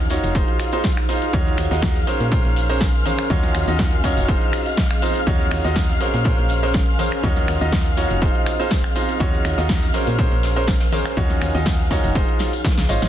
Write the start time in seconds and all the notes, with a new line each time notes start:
Already playing: D#2 D#4 F#4 C#5 F5 F6
0.10 D#4 F4 F#4 C#5, snare, closed hi-hat, open hi-hat, tambourine
0.24 F1, closed hi-hat, tambourine
0.35 D#4 F4 G#4 C5, kick, closed hi-hat, tambourine
0.48 G#4, closed hi-hat
0.59 finger snap, closed hi-hat, open hi-hat, tambourine
0.72 D#4 F4 G#4 C5, closed hi-hat, tambourine
0.84 kick, snare, closed hi-hat, tambourine
0.97 finger snap, snare, closed hi-hat
1.09 D#4 F4 G#4 C5, closed hi-hat, open hi-hat, tambourine
1.22 closed hi-hat, tambourine
1.33 D#2 D#4 F4 F#4 C#5, kick, closed hi-hat, tambourine, high conga
1.46 snare
1.57 D#2, finger snap, closed hi-hat, open hi-hat, tambourine
1.71 D#2 D#4 F4 F#4 D#5, snare, closed hi-hat, tambourine
1.82 kick, snare, closed hi-hat, tambourine, high conga
1.96 snare, closed hi-hat
2.07 C#4 G#4 A#4 C5, closed hi-hat, open hi-hat, tambourine
2.20 A#2 A#4, closed hi-hat, tambourine
2.31 C#4 G#4 A#4 C5, kick, closed hi-hat, tambourine
2.45 A#1, closed hi-hat
2.49 G#5 C6
2.56 closed hi-hat, open hi-hat, tambourine
2.69 C#4 G#4 A#4 C5, closed hi-hat, tambourine
2.81 kick, snare, closed hi-hat, tambourine
3.05 C#4 G#4 A#4 C5, closed hi-hat, open hi-hat, tambourine, high conga
3.18 finger snap, closed hi-hat, tambourine
3.30 D#2 D#4 F4 F#4 C#5, kick, closed hi-hat, tambourine, high conga
3.43 F#4, snare, closed hi-hat
3.55 D#2, finger snap, closed hi-hat, open hi-hat, tambourine
3.65 D#2 D#4 F4 F#4 D#5 F5, closed hi-hat, tambourine, high conga
3.75 D#5, snare, tambourine
3.79 kick, snare, closed hi-hat, high conga
3.92 closed hi-hat
4.04 D#4 F4 F#4 C#5, kick, snare, closed hi-hat, open hi-hat, tambourine
4.17 F1, closed hi-hat, tambourine
4.28 C4 D#4 F4 G#4 C5, kick, closed hi-hat
4.33 G#4
4.42 closed hi-hat
4.53 finger snap, closed hi-hat, open hi-hat, tambourine
4.66 closed hi-hat, tambourine
4.77 kick, snare, closed hi-hat
4.91 finger snap, snare, closed hi-hat
5.02 D#4 F4 G#4 C5, closed hi-hat, open hi-hat, tambourine
5.15 closed hi-hat, tambourine
5.27 D#2 C#4 D#4 F4 F#4 C#5, kick, closed hi-hat, tambourine, high conga
5.39 F#4, snare
5.51 D#2, finger snap, closed hi-hat, open hi-hat, tambourine
5.64 D#2 D#4 F4 F#4 D#5, snare, closed hi-hat, tambourine
5.76 kick, snare, closed hi-hat, tambourine, high conga
5.89 snare, closed hi-hat
6.00 C#4 G#4 A#4 C5, closed hi-hat, open hi-hat, tambourine
6.14 A#2 A#4, closed hi-hat, tambourine
6.24 C#4 G#4 A#4 C5 C6, kick, closed hi-hat, tambourine
6.38 A#1, closed hi-hat
6.49 closed hi-hat, open hi-hat, tambourine
6.56 G#5
6.63 C#4 G#4 A#4 C5, closed hi-hat, tambourine
6.74 kick, snare, closed hi-hat, tambourine
6.99 C#4 G#4 A#4 C5, closed hi-hat, open hi-hat, tambourine, high conga
7.12 finger snap, closed hi-hat, tambourine
7.23 D#2 D#4 F4 F#4 C#5, kick, closed hi-hat, tambourine, high conga
7.36 snare, closed hi-hat
7.46 D#2 F#4, finger snap, closed hi-hat, open hi-hat, tambourine
7.50 D#5 F5
7.61 D#2 D#4 F4 F#4 D#5, closed hi-hat, tambourine
7.72 kick, snare, closed hi-hat, tambourine, high conga
7.86 closed hi-hat
7.97 D#4 F4 F#4 C#5, snare, closed hi-hat, open hi-hat, tambourine
8.10 F1, closed hi-hat, tambourine
8.21 C4 D#4 F4 G#4 C5, kick, closed hi-hat, tambourine
8.31 G#4, closed hi-hat
8.46 finger snap, closed hi-hat, open hi-hat, tambourine
8.60 D#4 F4 G#4 C5, closed hi-hat, tambourine
8.71 kick, snare, closed hi-hat, tambourine
8.84 finger snap, snare, closed hi-hat
8.96 D#4 F4 G#4 C5, closed hi-hat, open hi-hat, tambourine
9.09 closed hi-hat, tambourine
9.20 D#2 C#4 D#4 F4 F#4 C#5, kick, closed hi-hat, tambourine, high conga
9.34 F#4, snare
9.45 D#2, finger snap, closed hi-hat, open hi-hat, tambourine
9.58 D#2 D#4 F4 F#4 D#5, snare, closed hi-hat, tambourine
9.69 kick, snare, closed hi-hat, tambourine, high conga
9.83 snare, closed hi-hat
9.94 C#4 G#4 A#4 C5, snare, closed hi-hat, open hi-hat, tambourine
10.02 A#4
10.07 A#2, closed hi-hat, tambourine
10.19 C#4 G#4 A#4 C5, kick, closed hi-hat, tambourine
10.25 C5
10.32 A#1, closed hi-hat
10.43 snare, closed hi-hat, open hi-hat, tambourine
10.50 G#5
10.56 C#4 G#4 A#4 C5, closed hi-hat, tambourine
10.68 kick, snare, closed hi-hat, tambourine
10.80 snare, closed hi-hat
10.92 C#4 G#4 A#4 C5, open hi-hat, tambourine, high conga
11.05 finger snap, snare, closed hi-hat, tambourine
11.17 D#2 D#4 F4 F#4 C#5, kick, closed hi-hat, tambourine, high conga
11.29 snare, closed hi-hat
11.41 D#2 F#4, finger snap, closed hi-hat, open hi-hat, tambourine
11.55 D#2 D#4 F4 F#4 D#5, closed hi-hat, tambourine, high conga
11.61 C#5 F5
11.66 kick, snare, closed hi-hat, tambourine, high conga
11.79 closed hi-hat
11.91 D#4 F4 F#4 C#5, kick, snare, closed hi-hat, open hi-hat, tambourine
12.04 F1, closed hi-hat, tambourine
12.15 D#4 F4 G#4 C5, kick, closed hi-hat, tambourine
12.27 G#4, closed hi-hat
12.39 snare, closed hi-hat, open hi-hat, tambourine
12.53 closed hi-hat, tambourine
12.65 kick, snare, closed hi-hat, tambourine
12.71 snare, closed hi-hat
12.78 C#2 C#5, snare, closed hi-hat
12.83 snare, closed hi-hat
12.89 G#1 F4 C5 C#5 D#5, open hi-hat, tambourine
13.02 G#1, snare, closed hi-hat, tambourine